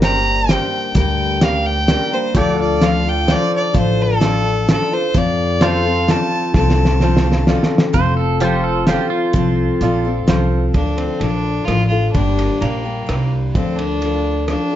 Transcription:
Already playing: G1
0.02 G3 A#3 D4 G4 A#4 C5 A#5, snare, closed hi-hat
0.48 G3 A#3 D4 G4 A#4 C5 G5, snare, closed hi-hat
0.95 D2 G2 D3 G3 A#3 D4 A#4 G5, kick, closed hi-hat
1.41 G3 A#3 D4 G4 A#4 D5 F5, snare, closed hi-hat
1.66 G5
1.88 G3 A#3 D4 G4 A#4 D5, snare, closed hi-hat
2.11 G3 A#3 D4 A#4 C5
2.35 D2 D3 F3 D4 F4 G4 A4 D5, kick, closed hi-hat
2.61 F4 D5
2.81 F3 D4 F4 A4 D5 F5, snare, closed hi-hat
3.04 D4 F4 A4
3.09 G5
3.27 F3 D4 F4 A4 C5, snare, closed hi-hat
3.32 D5
3.56 D5
3.73 A1 D3 F3 D4 F4 A4, kick, closed hi-hat
3.79 C5
4.01 A4
4.20 F3 D4 F4 A4 D5, snare, closed hi-hat
4.68 F3 D4 F4 A4 D5, snare, closed hi-hat
4.91 D4 F4 A4 C5
5.14 F2 F3 C4 F4 A4 D5, kick, closed hi-hat
5.61 F3 C4 F4 A4 C5 F5, snare, closed hi-hat
5.85 C4 F4 A4
6.08 F3 C4 F4 A4 D5 A5, snare, closed hi-hat
6.54 C2 F3 C4 F4 A4 A5, kick, snare
6.70 snare
6.85 snare
7.00 F3 C4 F4 A4 C5, snare
7.04 A4
7.17 snare
7.24 C4 F4 A4
7.32 snare
7.47 F3 C4 F4 A4 D5, snare
7.63 snare
7.78 snare
7.93 F1 F3 C4 F4 A4 C5, kick, closed hi-hat
8.17 A4
8.40 F3 C4 F4 G4 A4 C5, closed hi-hat
8.64 A4
8.87 F3 C4 F4 G4 A4 C5, snare, closed hi-hat
9.10 F4
9.33 C2 F3 C4 F4 A4, kick, closed hi-hat
9.81 A#1 F3 C4 F4 A4 D5, closed hi-hat
10.05 C4 F4 A4
10.27 C2 F3 C4 F4 A4 C5 F5, snare, closed hi-hat
10.74 D2 D3 F3 D4 F4 A4, kick, ride
10.98 C4, ride
11.20 A#1 F3 D4 F4, ride
11.24 A4
11.65 A1 F3 F4, cross-stick, ride
11.70 D4 F4 A4
11.88 F4 A4
11.93 D4 F4
12.12 G1 G2 D3 G3 A#3 D4, kick, ride
12.17 G4
12.39 ride
12.60 A#1 G3 A#3 D4 G4, ride
12.83 G3 A#3 D4 G4
13.06 C2 G3 A#3 D4 G4, cross-stick, ride
13.55 D2 D3 F3 C4 D4 F4 A4, kick, ride
13.77 D4, ride
14.01 F3 D4 F4 A4, ride
14.48 F3 D4 F4 A4, cross-stick, ride
14.71 A4

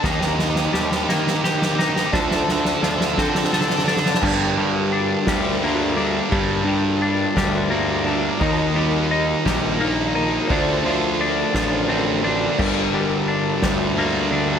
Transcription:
Already playing: G4
0.03 D#2 D#3 D#4 G4 D#5 A#5, kick, snare
0.10 D#4 G4
0.19 D#4 G4, snare
0.26 D#4 G4
0.34 D#4 G4
0.39 D#4 G4, snare
0.49 D#4 G4
0.56 D#4 G4, snare
0.65 D#4 G4
0.72 D#2 G3 D#4 G4, snare
0.81 D#4 G4
0.88 D#4 G4, snare
0.97 D#4 G4
1.04 D#4 G4
1.09 D#3 A#3 D#4 G4, snare
1.20 D#4 G4
1.27 D#4 G4, snare
1.35 D#4 G4
1.43 D#4 G4, snare
1.50 D#4 G4
1.58 D#4 G4, snare
1.66 D#4 G4
1.75 D#4 G4
1.79 D#4 G4, snare
1.90 D#4 G4
1.96 D#4 G4, snare
2.05 D#4 G4
2.12 D2 D3 D4 F4 A4 C5 D5 A5, kick, snare
2.20 D4 A4
2.28 D4 A4, snare
2.35 D4 A4
2.44 D4 A4
2.48 D4 A4, snare
2.60 D4 A4
2.65 D4 A4, snare
2.75 D4 A4
2.82 D2 F3 D4 A4, snare
2.89 D4 A4
2.97 D4 A4, snare
3.05 D4 A4
3.13 D4 A4
3.18 D3 C4 D4, kick, snare
3.22 A4
3.28 D4 A4
3.35 D4 A4, snare
3.44 D4 A4, snare
3.53 D4 A4, snare
3.59 D4 A4, snare
3.68 D4 A4, snare
3.75 D4 A4, snare
3.84 D4 A4, snare
3.88 D4 A4
3.97 D4 A4, snare
4.06 D4 A4, snare
4.14 D4 A4, snare
4.22 G2 D3 G3 G4 A#4 D5 A5, kick, crash
4.57 G2 D3 G3, ride
4.92 D4, ride
5.27 D2 G2 D3 G3, kick, snare, ride
5.61 G2 D3 G3 A#3, ride
5.96 G2 D3 G3 D4, ride
6.29 G2 D3 G3, kick, ride
6.64 G2 D3 G3, ride
7.02 D4, ride
7.35 D2 G2 D3 G3, kick, snare, ride
7.70 G2 D3 G3 A#3, ride
8.05 G2 D3 G3 D4, ride
8.40 D#2 D#3 A#3 D#4 D#5 A#5, kick, ride
8.75 D#3 G3 A#3 D#4, ride
9.11 D#4, ride
9.45 A#1 D#3 G3 A#3 D#4, kick, snare, ride
9.80 D#3 A#3 D#4, ride
10.15 D#3 A#3 D#4, ride
10.47 D2 D3 A3 D4 F4 C5 D5 A5, kick, ride
10.51 D3
10.84 D3 F3 A3 D4, ride
11.20 D4, ride
11.54 A1 D3 F3 A3 D4, kick, snare, ride
11.88 D3 A3 C4 D4, ride
12.24 D3 A3 D4, ride
12.59 G1 G2 D3 G3 G4 A#4, kick, crash
12.94 G2 D3 G3, ride
13.28 D4, ride
13.62 D2 G2 D3 G3, kick, snare, ride
13.97 G2 D3 G3 A#3, ride
14.32 G2 D3 G3 D4, ride

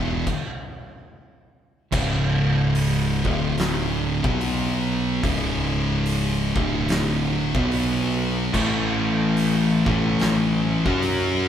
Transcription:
Already playing: E1 E2 B2 E3
0.27 kick, crash
1.92 C#1 C#2 G#2 C#3, kick, crash
2.75 open hi-hat
3.24 D1 D2 A2 D3, kick
3.58 snare, open hi-hat
4.24 B1 B2 F#3 B3, kick
4.41 open hi-hat
5.23 C#1 C#2 G#2 C#3, kick, open hi-hat
6.06 open hi-hat
6.56 D1 D2 A2 D3, kick
6.88 snare, open hi-hat
7.55 B1 B2 F#3 B3, kick
7.71 open hi-hat
8.53 A1 A2 E3 A3, kick, crash
9.37 open hi-hat
9.86 A1 A2 E3 A3, kick
10.19 snare, open hi-hat
10.86 F#2 F#3 C#4 F#4, kick
11.02 open hi-hat

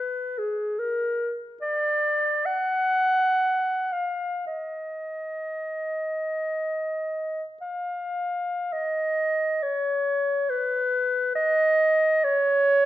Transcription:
Already playing: B4
0.38 G#4
0.79 A#4
1.62 D5
2.46 F#5
3.93 F5
4.47 D#5
7.62 F5
8.73 D#5
9.63 C#5
10.50 B4
11.36 D#5
12.24 C#5

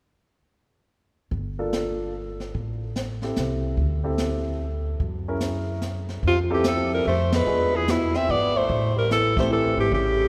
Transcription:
1.31 G1, brush sweep, kick
1.59 A#3 D4 F4 A4
1.73 snare, hi-hat pedal
2.40 snare
2.54 A1, brush sweep, kick
2.96 snare, hi-hat pedal
3.22 C4 E4 G4 A4, snare
3.36 C2, snare, hi-hat pedal
3.77 D2, brush sweep, kick
4.04 C4 E4 G4 A4
4.18 snare, hi-hat pedal
5.00 F#2, brush sweep, kick
5.28 C#4 E4 G#4 A#4
5.40 snare, hi-hat pedal
5.81 snare, hi-hat pedal
6.09 snare
6.23 F2 C3, brush sweep, kick
6.28 F4
6.50 E3 C4 E4 G4 A4
6.54 G4
6.64 F3, snare, hi-hat pedal
6.68 A4
6.93 G3 A#4
7.05 F2 A3 C5
7.32 G#3 B4, snare, ride
7.46 E2 B3 D4 F4 G#4, brush sweep
7.75 E3 G#4
7.88 B2 E4, snare, hi-hat pedal
8.14 C4 E5, snare
8.29 G#1 B3 D5
8.56 A3 C5
8.69 A1, brush sweep, kick
8.95 G3 A#4
9.10 E3 A4, snare, hi-hat pedal
9.36 A3 C4 E4 G4, kick, snare
9.40 C5
9.50 E3 A4
9.77 G#1 E3 G4
9.91 A1 C#3 G4, brush sweep, kick

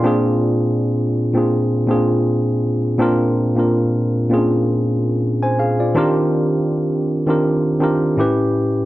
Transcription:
Already playing: D5
0.03 A#2 C4 D4 F4 G#4
1.34 A#2 C4 D4 F4 G#4
1.87 A#2 C4 D4 F4 G#4
2.98 A#2 C4 D4 F4 A#4
3.56 A#2 C4 D4 F4 A#4
4.30 A#2 C4 C#4 F4 G#4
4.38 D4
5.43 C5 G#5
5.59 G#4 F5
5.80 F4 D5
5.95 D#3 C4 D4 F4 G4 A#4
7.27 D#3 C4 D4 F4 G4 A#4
7.80 D#3 C4 D4 F4 G4 A#4
8.17 A2 C#4 E4 G4 B4

